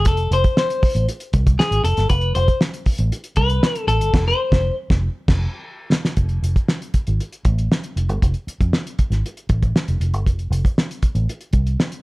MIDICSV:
0, 0, Header, 1, 5, 480
1, 0, Start_track
1, 0, Tempo, 510204
1, 57, Time_signature, 4, 2, 24, 8
1, 11308, End_track
2, 0, Start_track
2, 0, Title_t, "Clean electric guitar"
2, 0, Program_c, 0, 27
2, 72, Note_on_c, 0, 69, 97
2, 310, Note_off_c, 0, 69, 0
2, 313, Note_on_c, 0, 72, 99
2, 536, Note_off_c, 0, 72, 0
2, 548, Note_on_c, 0, 72, 90
2, 989, Note_off_c, 0, 72, 0
2, 1496, Note_on_c, 0, 68, 82
2, 1731, Note_off_c, 0, 68, 0
2, 1735, Note_on_c, 0, 69, 88
2, 1959, Note_off_c, 0, 69, 0
2, 1972, Note_on_c, 0, 71, 109
2, 2207, Note_off_c, 0, 71, 0
2, 2211, Note_on_c, 0, 72, 109
2, 2436, Note_off_c, 0, 72, 0
2, 3169, Note_on_c, 0, 71, 109
2, 3646, Note_off_c, 0, 71, 0
2, 3649, Note_on_c, 0, 69, 107
2, 3986, Note_off_c, 0, 69, 0
2, 4023, Note_on_c, 0, 72, 107
2, 4464, Note_off_c, 0, 72, 0
2, 11308, End_track
3, 0, Start_track
3, 0, Title_t, "Fingered electric bass"
3, 0, Program_c, 1, 33
3, 52, Note_on_c, 1, 29, 100
3, 261, Note_off_c, 1, 29, 0
3, 291, Note_on_c, 1, 29, 95
3, 397, Note_off_c, 1, 29, 0
3, 893, Note_on_c, 1, 33, 87
3, 998, Note_off_c, 1, 33, 0
3, 1257, Note_on_c, 1, 36, 96
3, 1464, Note_off_c, 1, 36, 0
3, 1610, Note_on_c, 1, 32, 90
3, 1716, Note_off_c, 1, 32, 0
3, 1730, Note_on_c, 1, 29, 81
3, 1836, Note_off_c, 1, 29, 0
3, 1857, Note_on_c, 1, 31, 95
3, 1960, Note_off_c, 1, 31, 0
3, 1976, Note_on_c, 1, 29, 116
3, 2182, Note_off_c, 1, 29, 0
3, 2219, Note_on_c, 1, 29, 105
3, 2321, Note_off_c, 1, 29, 0
3, 2811, Note_on_c, 1, 33, 88
3, 2916, Note_off_c, 1, 33, 0
3, 3167, Note_on_c, 1, 36, 96
3, 3377, Note_off_c, 1, 36, 0
3, 3644, Note_on_c, 1, 33, 73
3, 3765, Note_off_c, 1, 33, 0
3, 3765, Note_on_c, 1, 31, 85
3, 3872, Note_off_c, 1, 31, 0
3, 3896, Note_on_c, 1, 29, 104
3, 4058, Note_off_c, 1, 29, 0
3, 4250, Note_on_c, 1, 29, 96
3, 4414, Note_off_c, 1, 29, 0
3, 4611, Note_on_c, 1, 29, 108
3, 4775, Note_off_c, 1, 29, 0
3, 4969, Note_on_c, 1, 29, 101
3, 5133, Note_off_c, 1, 29, 0
3, 5805, Note_on_c, 1, 29, 96
3, 6014, Note_off_c, 1, 29, 0
3, 6045, Note_on_c, 1, 29, 76
3, 6151, Note_off_c, 1, 29, 0
3, 6659, Note_on_c, 1, 32, 84
3, 6759, Note_off_c, 1, 32, 0
3, 7009, Note_on_c, 1, 33, 87
3, 7217, Note_off_c, 1, 33, 0
3, 7490, Note_on_c, 1, 29, 64
3, 7611, Note_off_c, 1, 29, 0
3, 7611, Note_on_c, 1, 31, 94
3, 7714, Note_off_c, 1, 31, 0
3, 7740, Note_on_c, 1, 29, 89
3, 7840, Note_off_c, 1, 29, 0
3, 8095, Note_on_c, 1, 41, 81
3, 8197, Note_off_c, 1, 41, 0
3, 8563, Note_on_c, 1, 32, 80
3, 8671, Note_off_c, 1, 32, 0
3, 8930, Note_on_c, 1, 33, 85
3, 9138, Note_off_c, 1, 33, 0
3, 9298, Note_on_c, 1, 29, 82
3, 9399, Note_off_c, 1, 29, 0
3, 9410, Note_on_c, 1, 29, 77
3, 9535, Note_off_c, 1, 29, 0
3, 9535, Note_on_c, 1, 31, 77
3, 9654, Note_off_c, 1, 31, 0
3, 9654, Note_on_c, 1, 29, 92
3, 9860, Note_off_c, 1, 29, 0
3, 9884, Note_on_c, 1, 29, 92
3, 9991, Note_off_c, 1, 29, 0
3, 10489, Note_on_c, 1, 33, 75
3, 10594, Note_off_c, 1, 33, 0
3, 10847, Note_on_c, 1, 36, 87
3, 11056, Note_off_c, 1, 36, 0
3, 11308, End_track
4, 0, Start_track
4, 0, Title_t, "Muted fingered electric bass strokes"
4, 774, Note_on_c, 9, 29, 49
4, 868, Note_off_c, 9, 29, 0
4, 2692, Note_on_c, 9, 29, 50
4, 2786, Note_off_c, 9, 29, 0
4, 6531, Note_on_c, 9, 29, 41
4, 6625, Note_off_c, 9, 29, 0
4, 7971, Note_on_c, 9, 29, 38
4, 8065, Note_off_c, 9, 29, 0
4, 8458, Note_on_c, 9, 29, 46
4, 8552, Note_off_c, 9, 29, 0
4, 10373, Note_on_c, 9, 29, 45
4, 10467, Note_off_c, 9, 29, 0
4, 11308, End_track
5, 0, Start_track
5, 0, Title_t, "Drums"
5, 47, Note_on_c, 9, 42, 98
5, 56, Note_on_c, 9, 36, 99
5, 141, Note_off_c, 9, 42, 0
5, 150, Note_off_c, 9, 36, 0
5, 160, Note_on_c, 9, 42, 44
5, 254, Note_off_c, 9, 42, 0
5, 299, Note_on_c, 9, 42, 76
5, 393, Note_off_c, 9, 42, 0
5, 415, Note_on_c, 9, 42, 47
5, 418, Note_on_c, 9, 36, 92
5, 509, Note_off_c, 9, 42, 0
5, 512, Note_off_c, 9, 36, 0
5, 536, Note_on_c, 9, 38, 107
5, 630, Note_off_c, 9, 38, 0
5, 661, Note_on_c, 9, 42, 54
5, 755, Note_off_c, 9, 42, 0
5, 777, Note_on_c, 9, 46, 74
5, 780, Note_on_c, 9, 36, 96
5, 871, Note_off_c, 9, 46, 0
5, 874, Note_off_c, 9, 36, 0
5, 899, Note_on_c, 9, 42, 54
5, 993, Note_off_c, 9, 42, 0
5, 1021, Note_on_c, 9, 42, 71
5, 1115, Note_off_c, 9, 42, 0
5, 1131, Note_on_c, 9, 42, 53
5, 1225, Note_off_c, 9, 42, 0
5, 1252, Note_on_c, 9, 42, 76
5, 1257, Note_on_c, 9, 36, 94
5, 1347, Note_off_c, 9, 42, 0
5, 1351, Note_off_c, 9, 36, 0
5, 1379, Note_on_c, 9, 42, 52
5, 1380, Note_on_c, 9, 36, 93
5, 1473, Note_off_c, 9, 42, 0
5, 1474, Note_off_c, 9, 36, 0
5, 1504, Note_on_c, 9, 38, 127
5, 1598, Note_off_c, 9, 38, 0
5, 1618, Note_on_c, 9, 42, 53
5, 1712, Note_off_c, 9, 42, 0
5, 1736, Note_on_c, 9, 42, 85
5, 1830, Note_off_c, 9, 42, 0
5, 1854, Note_on_c, 9, 42, 53
5, 1862, Note_on_c, 9, 38, 39
5, 1948, Note_off_c, 9, 42, 0
5, 1956, Note_off_c, 9, 38, 0
5, 1971, Note_on_c, 9, 42, 92
5, 1976, Note_on_c, 9, 36, 101
5, 2065, Note_off_c, 9, 42, 0
5, 2070, Note_off_c, 9, 36, 0
5, 2081, Note_on_c, 9, 42, 41
5, 2175, Note_off_c, 9, 42, 0
5, 2212, Note_on_c, 9, 42, 74
5, 2306, Note_off_c, 9, 42, 0
5, 2334, Note_on_c, 9, 42, 48
5, 2335, Note_on_c, 9, 36, 87
5, 2428, Note_off_c, 9, 42, 0
5, 2429, Note_off_c, 9, 36, 0
5, 2453, Note_on_c, 9, 38, 107
5, 2547, Note_off_c, 9, 38, 0
5, 2575, Note_on_c, 9, 42, 54
5, 2669, Note_off_c, 9, 42, 0
5, 2688, Note_on_c, 9, 46, 71
5, 2693, Note_on_c, 9, 36, 81
5, 2782, Note_off_c, 9, 46, 0
5, 2787, Note_off_c, 9, 36, 0
5, 2805, Note_on_c, 9, 42, 50
5, 2899, Note_off_c, 9, 42, 0
5, 2937, Note_on_c, 9, 42, 78
5, 3031, Note_off_c, 9, 42, 0
5, 3046, Note_on_c, 9, 42, 53
5, 3140, Note_off_c, 9, 42, 0
5, 3159, Note_on_c, 9, 42, 75
5, 3169, Note_on_c, 9, 36, 92
5, 3253, Note_off_c, 9, 42, 0
5, 3263, Note_off_c, 9, 36, 0
5, 3288, Note_on_c, 9, 42, 49
5, 3382, Note_off_c, 9, 42, 0
5, 3415, Note_on_c, 9, 38, 123
5, 3509, Note_off_c, 9, 38, 0
5, 3531, Note_on_c, 9, 42, 55
5, 3625, Note_off_c, 9, 42, 0
5, 3658, Note_on_c, 9, 42, 80
5, 3752, Note_off_c, 9, 42, 0
5, 3773, Note_on_c, 9, 42, 57
5, 3867, Note_off_c, 9, 42, 0
5, 3892, Note_on_c, 9, 36, 115
5, 3894, Note_on_c, 9, 49, 78
5, 3899, Note_on_c, 9, 38, 108
5, 3986, Note_off_c, 9, 36, 0
5, 3988, Note_off_c, 9, 49, 0
5, 3993, Note_off_c, 9, 38, 0
5, 4252, Note_on_c, 9, 36, 112
5, 4258, Note_on_c, 9, 38, 120
5, 4346, Note_off_c, 9, 36, 0
5, 4352, Note_off_c, 9, 38, 0
5, 4611, Note_on_c, 9, 36, 115
5, 4616, Note_on_c, 9, 38, 97
5, 4705, Note_off_c, 9, 36, 0
5, 4710, Note_off_c, 9, 38, 0
5, 4970, Note_on_c, 9, 36, 118
5, 4970, Note_on_c, 9, 49, 90
5, 4975, Note_on_c, 9, 38, 109
5, 5064, Note_off_c, 9, 36, 0
5, 5064, Note_off_c, 9, 49, 0
5, 5069, Note_off_c, 9, 38, 0
5, 5572, Note_on_c, 9, 38, 114
5, 5666, Note_off_c, 9, 38, 0
5, 5690, Note_on_c, 9, 38, 90
5, 5784, Note_off_c, 9, 38, 0
5, 5802, Note_on_c, 9, 42, 76
5, 5806, Note_on_c, 9, 36, 89
5, 5896, Note_off_c, 9, 42, 0
5, 5901, Note_off_c, 9, 36, 0
5, 5916, Note_on_c, 9, 42, 37
5, 6010, Note_off_c, 9, 42, 0
5, 6055, Note_on_c, 9, 42, 67
5, 6149, Note_off_c, 9, 42, 0
5, 6172, Note_on_c, 9, 36, 80
5, 6175, Note_on_c, 9, 42, 40
5, 6266, Note_off_c, 9, 36, 0
5, 6269, Note_off_c, 9, 42, 0
5, 6289, Note_on_c, 9, 38, 93
5, 6383, Note_off_c, 9, 38, 0
5, 6416, Note_on_c, 9, 42, 50
5, 6510, Note_off_c, 9, 42, 0
5, 6528, Note_on_c, 9, 42, 66
5, 6531, Note_on_c, 9, 36, 77
5, 6622, Note_off_c, 9, 42, 0
5, 6625, Note_off_c, 9, 36, 0
5, 6650, Note_on_c, 9, 42, 47
5, 6744, Note_off_c, 9, 42, 0
5, 6778, Note_on_c, 9, 42, 60
5, 6872, Note_off_c, 9, 42, 0
5, 6891, Note_on_c, 9, 42, 41
5, 6986, Note_off_c, 9, 42, 0
5, 7007, Note_on_c, 9, 42, 71
5, 7010, Note_on_c, 9, 36, 95
5, 7101, Note_off_c, 9, 42, 0
5, 7105, Note_off_c, 9, 36, 0
5, 7136, Note_on_c, 9, 42, 44
5, 7230, Note_off_c, 9, 42, 0
5, 7260, Note_on_c, 9, 38, 113
5, 7354, Note_off_c, 9, 38, 0
5, 7372, Note_on_c, 9, 42, 50
5, 7466, Note_off_c, 9, 42, 0
5, 7499, Note_on_c, 9, 42, 74
5, 7593, Note_off_c, 9, 42, 0
5, 7615, Note_on_c, 9, 42, 51
5, 7709, Note_off_c, 9, 42, 0
5, 7737, Note_on_c, 9, 36, 82
5, 7740, Note_on_c, 9, 42, 83
5, 7831, Note_off_c, 9, 36, 0
5, 7834, Note_off_c, 9, 42, 0
5, 7846, Note_on_c, 9, 42, 36
5, 7940, Note_off_c, 9, 42, 0
5, 7981, Note_on_c, 9, 42, 61
5, 8075, Note_off_c, 9, 42, 0
5, 8096, Note_on_c, 9, 36, 88
5, 8099, Note_on_c, 9, 42, 45
5, 8190, Note_off_c, 9, 36, 0
5, 8193, Note_off_c, 9, 42, 0
5, 8215, Note_on_c, 9, 38, 100
5, 8310, Note_off_c, 9, 38, 0
5, 8343, Note_on_c, 9, 42, 49
5, 8437, Note_off_c, 9, 42, 0
5, 8454, Note_on_c, 9, 42, 71
5, 8457, Note_on_c, 9, 36, 77
5, 8548, Note_off_c, 9, 42, 0
5, 8551, Note_off_c, 9, 36, 0
5, 8578, Note_on_c, 9, 42, 46
5, 8582, Note_on_c, 9, 38, 29
5, 8672, Note_off_c, 9, 42, 0
5, 8676, Note_off_c, 9, 38, 0
5, 8709, Note_on_c, 9, 42, 66
5, 8803, Note_off_c, 9, 42, 0
5, 8817, Note_on_c, 9, 42, 46
5, 8911, Note_off_c, 9, 42, 0
5, 8929, Note_on_c, 9, 42, 71
5, 8935, Note_on_c, 9, 36, 84
5, 9023, Note_off_c, 9, 42, 0
5, 9029, Note_off_c, 9, 36, 0
5, 9054, Note_on_c, 9, 42, 44
5, 9056, Note_on_c, 9, 36, 76
5, 9148, Note_off_c, 9, 42, 0
5, 9150, Note_off_c, 9, 36, 0
5, 9180, Note_on_c, 9, 38, 108
5, 9274, Note_off_c, 9, 38, 0
5, 9295, Note_on_c, 9, 42, 51
5, 9389, Note_off_c, 9, 42, 0
5, 9418, Note_on_c, 9, 42, 73
5, 9512, Note_off_c, 9, 42, 0
5, 9536, Note_on_c, 9, 42, 48
5, 9630, Note_off_c, 9, 42, 0
5, 9657, Note_on_c, 9, 36, 88
5, 9662, Note_on_c, 9, 42, 76
5, 9751, Note_off_c, 9, 36, 0
5, 9756, Note_off_c, 9, 42, 0
5, 9773, Note_on_c, 9, 42, 39
5, 9867, Note_off_c, 9, 42, 0
5, 9902, Note_on_c, 9, 42, 67
5, 9996, Note_off_c, 9, 42, 0
5, 10017, Note_on_c, 9, 36, 89
5, 10026, Note_on_c, 9, 42, 39
5, 10112, Note_off_c, 9, 36, 0
5, 10120, Note_off_c, 9, 42, 0
5, 10142, Note_on_c, 9, 38, 107
5, 10236, Note_off_c, 9, 38, 0
5, 10263, Note_on_c, 9, 42, 49
5, 10358, Note_off_c, 9, 42, 0
5, 10372, Note_on_c, 9, 42, 64
5, 10374, Note_on_c, 9, 36, 78
5, 10466, Note_off_c, 9, 42, 0
5, 10469, Note_off_c, 9, 36, 0
5, 10492, Note_on_c, 9, 42, 42
5, 10586, Note_off_c, 9, 42, 0
5, 10625, Note_on_c, 9, 42, 71
5, 10719, Note_off_c, 9, 42, 0
5, 10731, Note_on_c, 9, 42, 46
5, 10825, Note_off_c, 9, 42, 0
5, 10844, Note_on_c, 9, 42, 69
5, 10852, Note_on_c, 9, 36, 98
5, 10938, Note_off_c, 9, 42, 0
5, 10946, Note_off_c, 9, 36, 0
5, 10975, Note_on_c, 9, 42, 45
5, 11069, Note_off_c, 9, 42, 0
5, 11099, Note_on_c, 9, 38, 114
5, 11193, Note_off_c, 9, 38, 0
5, 11213, Note_on_c, 9, 42, 52
5, 11307, Note_off_c, 9, 42, 0
5, 11308, End_track
0, 0, End_of_file